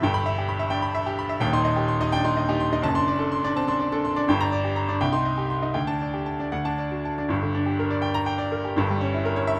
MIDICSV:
0, 0, Header, 1, 2, 480
1, 0, Start_track
1, 0, Key_signature, -2, "minor"
1, 0, Tempo, 467290
1, 12, Time_signature, 6, 3, 24, 8
1, 1932, Tempo, 479233
1, 4812, Tempo, 508044
1, 7212, Tempo, 485044
1, 9489, End_track
2, 0, Start_track
2, 0, Title_t, "Grand piano"
2, 0, Program_c, 0, 0
2, 0, Control_c, 0, 64, 127
2, 18, Note_on_c, 0, 31, 85
2, 32, Control_c, 0, 64, 0
2, 32, Note_on_c, 0, 43, 96
2, 35, Note_on_c, 0, 79, 87
2, 145, Note_on_c, 0, 83, 106
2, 170, Control_c, 0, 64, 127
2, 216, Note_off_c, 0, 79, 0
2, 265, Note_on_c, 0, 76, 81
2, 329, Note_off_c, 0, 83, 0
2, 393, Note_on_c, 0, 67, 77
2, 448, Note_off_c, 0, 76, 0
2, 499, Note_on_c, 0, 83, 84
2, 572, Note_off_c, 0, 67, 0
2, 610, Note_on_c, 0, 76, 84
2, 685, Note_off_c, 0, 83, 0
2, 721, Note_on_c, 0, 79, 93
2, 728, Note_on_c, 0, 62, 75
2, 801, Note_off_c, 0, 76, 0
2, 846, Note_on_c, 0, 83, 91
2, 848, Note_off_c, 0, 62, 0
2, 917, Note_off_c, 0, 79, 0
2, 972, Note_on_c, 0, 76, 89
2, 1040, Note_off_c, 0, 83, 0
2, 1093, Note_on_c, 0, 67, 85
2, 1163, Note_off_c, 0, 76, 0
2, 1219, Note_on_c, 0, 83, 86
2, 1284, Note_off_c, 0, 67, 0
2, 1329, Note_on_c, 0, 76, 81
2, 1408, Note_off_c, 0, 83, 0
2, 1414, Note_off_c, 0, 31, 0
2, 1421, Note_off_c, 0, 43, 0
2, 1439, Note_on_c, 0, 27, 97
2, 1444, Note_on_c, 0, 79, 94
2, 1451, Note_off_c, 0, 76, 0
2, 1451, Note_on_c, 0, 39, 99
2, 1468, Control_c, 0, 64, 0
2, 1572, Note_on_c, 0, 63, 81
2, 1575, Note_on_c, 0, 84, 113
2, 1641, Note_off_c, 0, 79, 0
2, 1652, Control_c, 0, 64, 127
2, 1692, Note_on_c, 0, 75, 88
2, 1765, Note_off_c, 0, 63, 0
2, 1766, Note_off_c, 0, 84, 0
2, 1812, Note_on_c, 0, 67, 83
2, 1885, Note_off_c, 0, 75, 0
2, 1933, Note_on_c, 0, 84, 85
2, 2004, Note_off_c, 0, 67, 0
2, 2058, Note_on_c, 0, 75, 96
2, 2059, Note_on_c, 0, 63, 87
2, 2123, Note_off_c, 0, 84, 0
2, 2176, Note_on_c, 0, 79, 108
2, 2181, Note_on_c, 0, 62, 77
2, 2246, Note_off_c, 0, 63, 0
2, 2246, Note_off_c, 0, 75, 0
2, 2296, Note_off_c, 0, 62, 0
2, 2297, Note_on_c, 0, 84, 96
2, 2298, Note_on_c, 0, 63, 88
2, 2364, Note_off_c, 0, 79, 0
2, 2421, Note_on_c, 0, 75, 88
2, 2484, Note_off_c, 0, 84, 0
2, 2485, Note_off_c, 0, 63, 0
2, 2539, Note_on_c, 0, 67, 90
2, 2542, Note_on_c, 0, 63, 83
2, 2606, Note_off_c, 0, 75, 0
2, 2654, Note_on_c, 0, 84, 89
2, 2724, Note_off_c, 0, 67, 0
2, 2726, Note_off_c, 0, 63, 0
2, 2779, Note_on_c, 0, 63, 81
2, 2780, Note_on_c, 0, 75, 88
2, 2839, Note_off_c, 0, 27, 0
2, 2841, Note_off_c, 0, 84, 0
2, 2845, Note_off_c, 0, 39, 0
2, 2876, Note_on_c, 0, 30, 98
2, 2886, Note_on_c, 0, 42, 104
2, 2887, Note_on_c, 0, 81, 101
2, 2892, Note_off_c, 0, 63, 0
2, 2892, Note_off_c, 0, 75, 0
2, 2905, Control_c, 0, 64, 0
2, 2999, Note_on_c, 0, 62, 78
2, 3004, Note_on_c, 0, 84, 110
2, 3045, Control_c, 0, 64, 127
2, 3077, Note_off_c, 0, 81, 0
2, 3131, Note_on_c, 0, 74, 92
2, 3193, Note_off_c, 0, 62, 0
2, 3196, Note_off_c, 0, 84, 0
2, 3241, Note_on_c, 0, 69, 81
2, 3319, Note_off_c, 0, 74, 0
2, 3371, Note_on_c, 0, 84, 89
2, 3433, Note_off_c, 0, 69, 0
2, 3497, Note_on_c, 0, 62, 82
2, 3498, Note_on_c, 0, 74, 89
2, 3558, Note_off_c, 0, 84, 0
2, 3615, Note_on_c, 0, 60, 72
2, 3619, Note_on_c, 0, 81, 98
2, 3681, Note_off_c, 0, 62, 0
2, 3682, Note_off_c, 0, 74, 0
2, 3728, Note_off_c, 0, 60, 0
2, 3735, Note_on_c, 0, 62, 81
2, 3736, Note_on_c, 0, 84, 89
2, 3802, Note_off_c, 0, 81, 0
2, 3852, Note_on_c, 0, 74, 82
2, 3921, Note_off_c, 0, 62, 0
2, 3921, Note_off_c, 0, 84, 0
2, 3977, Note_on_c, 0, 69, 88
2, 3978, Note_on_c, 0, 62, 78
2, 4040, Note_off_c, 0, 74, 0
2, 4101, Note_on_c, 0, 84, 86
2, 4164, Note_off_c, 0, 69, 0
2, 4165, Note_off_c, 0, 62, 0
2, 4218, Note_on_c, 0, 62, 78
2, 4220, Note_on_c, 0, 74, 85
2, 4282, Note_off_c, 0, 30, 0
2, 4287, Note_off_c, 0, 42, 0
2, 4287, Note_off_c, 0, 84, 0
2, 4334, Note_off_c, 0, 62, 0
2, 4335, Note_off_c, 0, 74, 0
2, 4335, Note_on_c, 0, 31, 90
2, 4343, Note_on_c, 0, 79, 86
2, 4346, Control_c, 0, 64, 0
2, 4353, Note_on_c, 0, 43, 93
2, 4458, Note_on_c, 0, 62, 72
2, 4461, Note_on_c, 0, 82, 104
2, 4498, Control_c, 0, 64, 127
2, 4530, Note_off_c, 0, 79, 0
2, 4578, Note_on_c, 0, 74, 85
2, 4647, Note_off_c, 0, 62, 0
2, 4649, Note_off_c, 0, 82, 0
2, 4701, Note_on_c, 0, 67, 73
2, 4768, Note_off_c, 0, 74, 0
2, 4816, Note_on_c, 0, 82, 78
2, 4886, Note_off_c, 0, 67, 0
2, 4935, Note_on_c, 0, 62, 70
2, 4935, Note_on_c, 0, 74, 83
2, 4999, Note_off_c, 0, 82, 0
2, 5027, Note_off_c, 0, 31, 0
2, 5035, Note_off_c, 0, 43, 0
2, 5048, Note_off_c, 0, 62, 0
2, 5048, Note_off_c, 0, 74, 0
2, 5049, Note_on_c, 0, 79, 91
2, 5051, Note_on_c, 0, 36, 94
2, 5063, Control_c, 0, 64, 0
2, 5161, Note_on_c, 0, 63, 73
2, 5162, Note_on_c, 0, 84, 99
2, 5230, Control_c, 0, 64, 127
2, 5234, Note_off_c, 0, 79, 0
2, 5281, Note_on_c, 0, 75, 72
2, 5350, Note_off_c, 0, 63, 0
2, 5351, Note_off_c, 0, 84, 0
2, 5397, Note_on_c, 0, 67, 75
2, 5470, Note_off_c, 0, 75, 0
2, 5515, Note_on_c, 0, 84, 67
2, 5587, Note_off_c, 0, 67, 0
2, 5632, Note_on_c, 0, 75, 67
2, 5634, Note_on_c, 0, 63, 66
2, 5706, Note_off_c, 0, 84, 0
2, 5736, Note_off_c, 0, 36, 0
2, 5741, Note_on_c, 0, 79, 74
2, 5745, Note_on_c, 0, 38, 81
2, 5752, Note_off_c, 0, 75, 0
2, 5754, Note_off_c, 0, 63, 0
2, 5771, Control_c, 0, 64, 0
2, 5867, Note_on_c, 0, 81, 89
2, 5870, Note_on_c, 0, 62, 61
2, 5917, Control_c, 0, 64, 127
2, 5940, Note_off_c, 0, 79, 0
2, 6003, Note_on_c, 0, 74, 68
2, 6064, Note_off_c, 0, 81, 0
2, 6066, Note_off_c, 0, 62, 0
2, 6115, Note_on_c, 0, 67, 63
2, 6193, Note_off_c, 0, 74, 0
2, 6232, Note_on_c, 0, 81, 66
2, 6311, Note_off_c, 0, 67, 0
2, 6361, Note_on_c, 0, 62, 64
2, 6366, Note_on_c, 0, 74, 72
2, 6430, Note_off_c, 0, 81, 0
2, 6455, Note_off_c, 0, 38, 0
2, 6478, Note_on_c, 0, 78, 78
2, 6481, Note_on_c, 0, 38, 78
2, 6482, Note_off_c, 0, 62, 0
2, 6484, Note_off_c, 0, 74, 0
2, 6498, Control_c, 0, 64, 0
2, 6601, Note_on_c, 0, 81, 90
2, 6603, Note_on_c, 0, 62, 66
2, 6675, Note_off_c, 0, 78, 0
2, 6692, Control_c, 0, 64, 127
2, 6727, Note_on_c, 0, 74, 66
2, 6799, Note_off_c, 0, 81, 0
2, 6800, Note_off_c, 0, 62, 0
2, 6852, Note_on_c, 0, 66, 66
2, 6924, Note_off_c, 0, 74, 0
2, 6981, Note_on_c, 0, 81, 63
2, 7047, Note_off_c, 0, 66, 0
2, 7102, Note_on_c, 0, 74, 67
2, 7107, Note_on_c, 0, 62, 60
2, 7170, Note_off_c, 0, 81, 0
2, 7191, Note_off_c, 0, 38, 0
2, 7201, Note_on_c, 0, 31, 84
2, 7217, Note_off_c, 0, 74, 0
2, 7217, Note_on_c, 0, 43, 88
2, 7219, Note_off_c, 0, 62, 0
2, 7234, Control_c, 0, 64, 0
2, 7339, Note_on_c, 0, 50, 69
2, 7391, Control_c, 0, 64, 127
2, 7459, Note_on_c, 0, 62, 75
2, 7533, Note_off_c, 0, 50, 0
2, 7574, Note_on_c, 0, 67, 70
2, 7654, Note_off_c, 0, 62, 0
2, 7703, Note_on_c, 0, 70, 76
2, 7773, Note_off_c, 0, 67, 0
2, 7815, Note_on_c, 0, 74, 81
2, 7898, Note_off_c, 0, 70, 0
2, 7925, Note_on_c, 0, 79, 83
2, 8014, Note_off_c, 0, 74, 0
2, 8051, Note_on_c, 0, 82, 109
2, 8129, Note_off_c, 0, 79, 0
2, 8167, Note_on_c, 0, 79, 83
2, 8252, Note_off_c, 0, 82, 0
2, 8286, Note_on_c, 0, 74, 86
2, 8370, Note_off_c, 0, 79, 0
2, 8422, Note_on_c, 0, 70, 74
2, 8491, Note_off_c, 0, 74, 0
2, 8550, Note_on_c, 0, 67, 74
2, 8619, Note_off_c, 0, 70, 0
2, 8625, Note_off_c, 0, 31, 0
2, 8633, Note_off_c, 0, 43, 0
2, 8663, Note_on_c, 0, 31, 91
2, 8671, Note_off_c, 0, 67, 0
2, 8676, Note_on_c, 0, 43, 95
2, 8690, Control_c, 0, 64, 0
2, 8801, Note_on_c, 0, 55, 75
2, 8829, Control_c, 0, 64, 127
2, 8908, Note_on_c, 0, 61, 83
2, 8984, Note_off_c, 0, 55, 0
2, 9038, Note_on_c, 0, 64, 76
2, 9095, Note_off_c, 0, 61, 0
2, 9148, Note_on_c, 0, 70, 85
2, 9217, Note_off_c, 0, 64, 0
2, 9257, Note_on_c, 0, 73, 87
2, 9331, Note_off_c, 0, 70, 0
2, 9367, Note_on_c, 0, 76, 100
2, 9445, Note_off_c, 0, 73, 0
2, 9489, Note_off_c, 0, 31, 0
2, 9489, Note_off_c, 0, 43, 0
2, 9489, Note_off_c, 0, 76, 0
2, 9489, End_track
0, 0, End_of_file